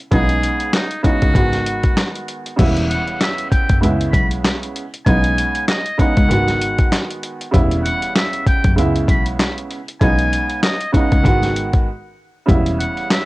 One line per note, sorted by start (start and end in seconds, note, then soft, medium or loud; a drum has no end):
0.11 0.40 B1 loud
0.11 0.84 C#3 medium
0.11 0.84 G#3 medium
0.11 0.84 B3 medium
0.11 0.85 D#4 loud
0.11 0.70 G#4 loud
0.11 kick loud
0.11 closed hi-hat medium
0.29 closed hi-hat medium
0.43 closed hi-hat medium
0.60 closed hi-hat medium
0.73 1.01 D#4 medium
0.73 snare loud
0.73 clap medium
0.73 closed hi-hat medium
0.91 closed hi-hat medium
1.03 1.32 C#3 loud
1.03 1.33 G#3 medium
1.03 1.33 B3 medium
1.03 1.34 D#4 loud
1.03 2.10 F#4 medium
1.03 kick loud
1.03 closed hi-hat medium
1.22 1.35 C#2 loud
1.22 kick loud
1.22 closed hi-hat medium
1.34 1.93 G#1 loud
1.34 2.50 D#3 medium
1.34 2.50 G#3 medium
1.34 2.50 B3 medium
1.34 2.51 F#4 loud
1.34 kick loud
1.34 closed hi-hat medium
1.53 snare soft
1.53 closed hi-hat medium
1.66 closed hi-hat medium
1.84 kick medium
1.84 closed hi-hat medium
1.97 snare loud
1.97 clap medium
1.97 closed hi-hat medium
2.16 closed hi-hat medium
2.28 closed hi-hat medium
2.46 closed hi-hat medium
2.56 2.88 E1 loud
2.56 3.79 C#3 loud
2.56 3.82 G3 medium
2.56 3.81 B3 medium
2.56 3.82 E4 loud
2.56 kick loud
2.56 closed hi-hat medium
2.56 crash loud
2.77 closed hi-hat medium
2.90 3.18 F#5 medium
2.90 closed hi-hat medium
3.07 closed hi-hat medium
3.21 3.49 E5 medium
3.21 snare loud
3.21 clap loud
3.21 closed hi-hat medium
3.38 closed hi-hat medium
3.51 3.79 G5 medium
3.51 kick loud
3.51 closed hi-hat medium
3.69 3.82 F#1 loud
3.69 kick loud
3.69 closed hi-hat medium
3.81 4.11 C#2 loud
3.81 4.82 C#3 medium
3.81 4.83 G#3 medium
3.81 4.83 B3 medium
3.81 4.84 E4 loud
3.81 closed hi-hat medium
4.01 closed hi-hat medium
4.12 4.42 B1 medium
4.12 4.28 B5 medium
4.12 kick loud
4.12 closed hi-hat medium
4.31 closed hi-hat medium
4.44 snare loud
4.44 clap loud
4.44 closed hi-hat medium
4.63 closed hi-hat medium
4.76 closed hi-hat medium
4.94 closed hi-hat medium
5.06 5.35 B1 loud
5.06 5.78 C#3 medium
5.06 5.79 G#3 medium
5.06 5.79 B3 medium
5.06 5.80 D#4 loud
5.06 5.64 G#5 loud
5.06 kick loud
5.06 closed hi-hat medium
5.24 closed hi-hat medium
5.38 closed hi-hat medium
5.55 closed hi-hat medium
5.68 5.96 D#5 medium
5.68 snare loud
5.68 clap medium
5.68 closed hi-hat medium
5.86 closed hi-hat medium
5.98 6.27 C#3 loud
5.98 6.28 G#3 medium
5.98 6.28 B3 medium
5.98 6.29 D#4 loud
5.98 7.06 F#5 loud
5.98 kick loud
5.98 closed hi-hat medium
6.17 6.29 C#2 loud
6.17 kick loud
6.17 closed hi-hat medium
6.29 6.88 G#1 loud
6.29 7.44 D#3 loud
6.29 7.45 G#3 medium
6.29 7.45 B3 medium
6.29 7.46 F#4 loud
6.29 closed hi-hat medium
6.48 snare soft
6.48 closed hi-hat medium
6.61 closed hi-hat medium
6.78 kick loud
6.78 closed hi-hat medium
6.92 snare loud
6.92 clap loud
6.92 closed hi-hat loud
7.10 closed hi-hat medium
7.23 closed hi-hat medium
7.41 closed hi-hat medium
7.51 7.82 E1 loud
7.51 8.74 C#3 loud
7.51 8.77 G3 medium
7.51 8.76 B3 medium
7.51 8.77 E4 loud
7.51 kick loud
7.51 closed hi-hat medium
7.71 closed hi-hat medium
7.84 8.12 F#5 medium
7.84 closed hi-hat medium
8.02 closed hi-hat medium
8.16 8.44 E5 medium
8.16 snare loud
8.16 clap loud
8.16 closed hi-hat medium
8.33 closed hi-hat medium
8.47 8.75 G5 medium
8.47 kick loud
8.47 closed hi-hat medium
8.64 8.77 F#1 medium
8.64 kick loud
8.64 closed hi-hat medium
8.76 9.06 C#2 loud
8.76 9.77 C#3 loud
8.76 9.78 G#3 medium
8.76 9.78 B3 medium
8.76 9.79 E4 loud
8.76 closed hi-hat medium
8.96 closed hi-hat medium
9.08 9.37 B1 medium
9.08 9.25 B5 medium
9.08 kick loud
9.08 closed hi-hat medium
9.26 closed hi-hat medium
9.39 snare loud
9.39 clap loud
9.39 closed hi-hat medium
9.58 closed hi-hat medium
9.71 closed hi-hat medium
9.88 closed hi-hat medium
10.01 10.30 B1 loud
10.01 10.73 C#3 medium
10.01 10.74 G#3 medium
10.01 10.74 B3 medium
10.01 10.75 D#4 loud
10.01 10.60 G#5 loud
10.01 kick loud
10.01 closed hi-hat medium
10.19 closed hi-hat medium
10.33 closed hi-hat medium
10.50 closed hi-hat medium
10.63 10.91 D#5 medium
10.63 snare loud
10.63 clap loud
10.63 closed hi-hat medium
10.81 closed hi-hat medium
10.92 11.22 C#3 loud
10.92 11.22 G#3 medium
10.92 11.23 B3 medium
10.92 11.23 D#4 loud
10.92 11.82 F#5 medium
10.92 kick loud
10.92 closed hi-hat medium
11.12 11.24 C#2 loud
11.12 kick loud
11.12 closed hi-hat medium
11.23 11.83 G#1 loud
11.23 11.86 D#3 loud
11.23 11.86 G#3 medium
11.23 11.87 B3 medium
11.23 11.87 F#4 loud
11.23 kick loud
11.23 closed hi-hat medium
11.42 snare soft
11.42 closed hi-hat medium
11.56 closed hi-hat medium
11.73 kick loud
11.73 closed hi-hat medium
12.46 12.77 E1 loud
12.46 13.25 C#3 loud
12.46 13.25 G3 medium
12.46 13.25 B3 medium
12.46 13.25 E4 loud
12.46 kick loud
12.46 closed hi-hat medium
12.66 closed hi-hat medium
12.80 13.07 F#5 medium
12.80 closed hi-hat medium
12.97 closed hi-hat medium
13.10 13.25 E5 medium
13.10 snare loud
13.10 clap medium
13.10 closed hi-hat medium